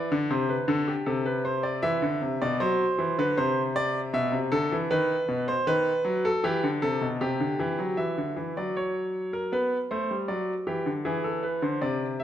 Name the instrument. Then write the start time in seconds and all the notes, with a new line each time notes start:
grand piano
Already playing: E3 D5
0.12 D3
0.30 C3 C5
0.49 B4
0.68 D3 A4
0.88 G4
1.06 C3 A4
1.26 B4
1.45 C5
1.63 D5
1.82 E3 E5
2.02 D3
2.22 C3
2.42 B2 D5
2.60 F#3 C5
2.98 E3
3.18 D3 B4
3.37 C3 C5
3.76 D5
4.13 B2 E5
4.32 C3
4.52 D3 A4
4.72 E3
4.91 D#3 B4
5.28 B2
5.48 C5
5.67 D#3 B4
6.05 F#3
6.25 A4
6.44 E3 G4
6.64 D3
6.82 C3 A4
7.01 B2
7.21 C3 G4
7.40 D3
7.60 E3
7.79 F#3
7.97 E3 E5
8.18 D3
8.37 E3
8.57 F#3 D5
8.77 C#5
9.33 A#4
9.52 B3 B4
9.91 A3 C5
10.11 G3
10.28 F#3 D5
10.67 E3 G4
10.86 D3
11.05 E3 G#4
11.24 A4
11.43 B4
11.62 D3 C5
11.81 C3 D5
12.20 E5